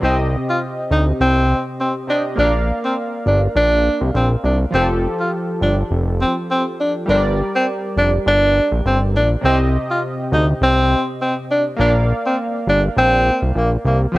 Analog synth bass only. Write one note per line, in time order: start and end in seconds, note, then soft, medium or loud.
0.03 0.36 C2 loud
0.91 1.13 D2 medium
1.20 1.54 C2 medium
2.38 2.72 A#1 loud
3.26 3.48 G1 medium
3.55 3.89 A#1 medium
4.01 4.11 C2 loud
4.14 4.36 A#1 medium
4.44 4.66 C2 medium
4.73 5.07 F1 loud
5.61 5.83 G1 medium
5.91 6.25 F1 loud
7.08 7.42 G1 loud
7.96 8.18 F1 medium
8.26 8.60 G1 loud
8.72 8.81 A#1 medium
8.85 9.16 G1 medium
9.14 9.36 A#1 loud
9.44 9.78 C2 loud
10.32 10.54 D2 medium
10.61 10.95 C2 loud
11.79 12.13 A#1 loud
12.67 12.89 G1 loud
12.97 13.30 A#1 loud
13.42 13.52 C2 medium
13.55 13.77 A#1 medium
13.85 14.07 C2 loud
14.14 14.18 F1 loud